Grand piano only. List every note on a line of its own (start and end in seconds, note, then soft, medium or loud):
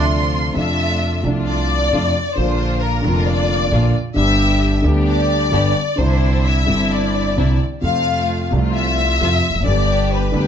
0.00 0.52 D2 medium
0.00 0.51 C3 medium
0.00 0.52 D3 medium
0.00 0.52 F3 medium
0.00 0.52 A3 medium
0.00 0.53 D4 medium
0.53 1.21 F2 medium
0.53 1.20 C3 medium
0.53 1.20 F3 medium
0.53 1.21 A3 medium
0.53 1.22 D4 medium
1.22 1.89 C2 medium
1.22 1.89 C3 medium
1.22 1.89 F3 medium
1.22 1.89 A3 medium
1.26 1.90 D4 medium
1.93 2.12 F2 medium
1.93 2.12 C3 medium
1.93 2.12 F3 medium
1.93 2.12 A3 medium
1.93 2.12 D4 medium
2.35 3.01 A#1 medium
2.35 3.01 A#2 medium
2.35 3.00 D3 medium
2.35 3.01 F3 medium
2.35 3.02 A#3 medium
2.35 3.02 F4 medium
3.02 3.68 F1 medium
3.02 3.69 F2 medium
3.02 3.67 D3 medium
3.02 3.68 F3 medium
3.02 3.69 A#3 medium
3.06 3.70 F4 medium
3.71 3.91 A#1 medium
3.71 3.91 A#2 medium
3.71 3.91 D3 medium
3.71 3.91 F3 medium
3.71 3.91 A#3 medium
3.71 3.91 F4 medium
4.14 4.81 G1 medium
4.14 4.81 G2 medium
4.14 4.80 D3 medium
4.14 4.80 G3 medium
4.14 4.81 B3 medium
4.14 4.82 G4 medium
4.82 5.49 D2 medium
4.82 5.49 D3 medium
4.82 5.49 G3 medium
4.82 5.49 B3 medium
4.82 5.50 G4 medium
5.51 5.71 G1 medium
5.51 5.71 G2 medium
5.51 5.71 D3 medium
5.51 5.71 G3 medium
5.51 5.71 B3 medium
5.51 5.72 G4 medium
5.96 6.64 C2 medium
5.96 6.64 C3 medium
5.96 6.62 D3 medium
5.96 6.63 G3 medium
5.96 6.64 C4 medium
6.00 6.65 E4 medium
6.65 7.33 G1 medium
6.65 7.33 G2 medium
6.65 7.32 D3 medium
6.65 7.33 G3 medium
6.65 7.33 C4 medium
6.69 7.34 E4 medium
7.36 7.56 C2 medium
7.36 7.56 C3 medium
7.36 7.56 D3 medium
7.36 7.56 G3 medium
7.36 7.56 C4 soft
7.36 7.56 E4 medium
7.81 8.49 F2 medium
7.81 8.48 C3 medium
7.81 8.49 F3 medium
7.81 8.49 A3 medium
7.81 8.50 F4 medium
8.51 9.18 C2 medium
8.51 9.18 C3 medium
8.51 9.17 F3 medium
8.51 9.18 A3 medium
8.55 9.19 F4 medium
9.20 9.40 F2 medium
9.20 9.40 C3 medium
9.20 9.40 F3 medium
9.20 9.40 A3 medium
9.20 9.40 F4 medium
9.49 9.55 E2 soft
9.55 9.61 F2 medium
9.60 9.66 F#2 medium
9.60 10.29 D3 medium
9.65 10.30 G1 medium
9.65 10.30 G2 medium
9.65 10.30 G3 medium
9.65 10.30 B3 medium
9.65 10.31 G4 medium
10.32 10.47 D2 medium
10.32 10.47 D3 medium
10.32 10.47 G3 medium
10.32 10.47 B3 medium
10.36 10.47 G4 medium